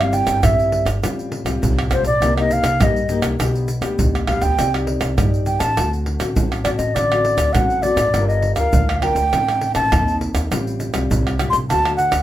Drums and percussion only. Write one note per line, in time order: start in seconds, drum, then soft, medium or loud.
0.01 pandeiro soft
0.01 tamborim medium
0.01 shaker soft
0.13 pandeiro medium
0.13 shaker medium
0.27 pandeiro medium
0.27 tamborim medium
0.27 shaker medium
0.43 pandeiro medium
0.43 tamborim medium
0.43 shaker medium
0.43 surdo loud
0.59 pandeiro soft
0.59 shaker soft
0.72 pandeiro medium
0.86 pandeiro medium
0.86 tamborim medium
0.86 shaker medium
1.04 pandeiro medium
1.04 tamborim medium
1.04 shaker medium
1.04 surdo medium
1.19 pandeiro soft
1.19 shaker soft
1.32 pandeiro medium
1.46 pandeiro medium
1.46 tamborim medium
1.46 shaker medium
1.63 pandeiro medium
1.63 shaker medium
1.63 surdo loud
1.79 pandeiro soft
1.79 tamborim medium
1.79 shaker soft
1.91 pandeiro medium
1.91 tamborim medium
1.91 shaker medium
1.91 surdo medium
2.05 pandeiro medium
2.05 shaker medium
2.22 pandeiro medium
2.22 tamborim medium
2.22 shaker medium
2.22 surdo medium
2.38 pandeiro soft
2.38 tamborim medium
2.38 shaker soft
2.51 pandeiro medium
2.51 shaker medium
2.64 pandeiro medium
2.64 tamborim medium
2.64 shaker medium
2.81 pandeiro medium
2.81 tamborim medium
2.81 shaker medium
2.81 surdo loud
2.96 pandeiro soft
2.96 shaker soft
3.09 pandeiro medium
3.09 shaker medium
3.22 pandeiro medium
3.22 tamborim medium
3.22 shaker medium
3.40 pandeiro medium
3.40 tamborim medium
3.40 shaker medium
3.40 surdo medium
3.55 pandeiro soft
3.55 shaker soft
3.68 pandeiro medium
3.68 shaker medium
3.82 pandeiro medium
3.82 tamborim medium
3.82 shaker medium
3.99 pandeiro medium
3.99 shaker medium
3.99 surdo loud
4.15 pandeiro soft
4.15 tamborim medium
4.15 shaker soft
4.27 pandeiro medium
4.27 tamborim medium
4.27 surdo medium
4.42 pandeiro medium
4.42 shaker medium
4.59 pandeiro medium
4.59 tamborim medium
4.59 shaker medium
4.59 surdo medium
4.74 pandeiro soft
4.74 tamborim medium
4.74 shaker soft
4.87 pandeiro medium
5.01 pandeiro medium
5.01 tamborim medium
5.01 shaker medium
5.18 pandeiro medium
5.18 tamborim medium
5.18 shaker medium
5.18 surdo loud
5.34 pandeiro soft
5.34 shaker soft
5.46 pandeiro medium
5.46 shaker medium
5.60 pandeiro medium
5.60 tamborim medium
5.60 shaker medium
5.77 pandeiro medium
5.77 tamborim medium
5.77 shaker medium
5.77 surdo medium
5.93 pandeiro soft
5.93 shaker soft
6.06 pandeiro medium
6.20 pandeiro medium
6.20 tamborim medium
6.20 shaker medium
6.36 pandeiro medium
6.36 shaker medium
6.36 surdo loud
6.52 pandeiro soft
6.52 tamborim medium
6.52 shaker soft
6.65 pandeiro medium
6.65 tamborim medium
6.65 shaker medium
6.65 surdo medium
6.79 pandeiro medium
6.79 shaker medium
6.96 pandeiro medium
6.96 tamborim medium
6.96 shaker medium
6.96 surdo medium
7.12 pandeiro soft
7.12 tamborim medium
7.12 shaker soft
7.25 pandeiro medium
7.38 pandeiro medium
7.38 tamborim medium
7.38 shaker medium
7.55 pandeiro medium
7.55 tamborim medium
7.55 shaker medium
7.55 surdo loud
7.70 pandeiro soft
7.70 shaker soft
7.83 pandeiro medium
7.83 shaker medium
7.97 pandeiro medium
7.97 tamborim medium
7.97 shaker medium
8.14 pandeiro medium
8.14 tamborim medium
8.14 shaker medium
8.14 surdo medium
8.30 pandeiro soft
8.30 shaker soft
8.42 pandeiro medium
8.56 pandeiro medium
8.56 tamborim medium
8.56 shaker medium
8.73 pandeiro medium
8.73 shaker medium
8.73 surdo loud
8.89 pandeiro soft
8.89 tamborim medium
8.89 shaker soft
9.02 pandeiro medium
9.02 tamborim medium
9.16 pandeiro medium
9.16 shaker medium
9.33 pandeiro medium
9.33 tamborim medium
9.33 shaker medium
9.33 surdo medium
9.48 pandeiro soft
9.48 tamborim medium
9.48 shaker soft
9.61 pandeiro medium
9.75 pandeiro medium
9.75 tamborim medium
9.75 shaker medium
9.92 pandeiro medium
9.92 tamborim medium
9.92 shaker medium
9.92 surdo loud
10.08 pandeiro soft
10.08 shaker soft
10.21 pandeiro medium
10.35 pandeiro medium
10.35 tamborim medium
10.35 shaker medium
10.52 pandeiro medium
10.52 tamborim medium
10.52 shaker medium
10.52 surdo medium
10.67 pandeiro soft
10.67 shaker soft
10.80 pandeiro medium
10.80 shaker medium
10.94 pandeiro medium
10.94 tamborim medium
10.94 shaker medium
11.11 pandeiro medium
11.11 shaker medium
11.11 surdo loud
11.27 pandeiro soft
11.27 tamborim medium
11.27 shaker soft
11.39 pandeiro medium
11.39 tamborim medium
11.39 shaker medium
11.53 pandeiro medium
11.53 shaker medium
11.70 pandeiro medium
11.70 tamborim medium
11.70 shaker medium
11.70 surdo medium
11.85 pandeiro soft
11.85 tamborim medium
11.85 shaker soft
11.99 pandeiro medium
11.99 shaker medium
12.12 pandeiro medium
12.12 tamborim medium
12.12 shaker medium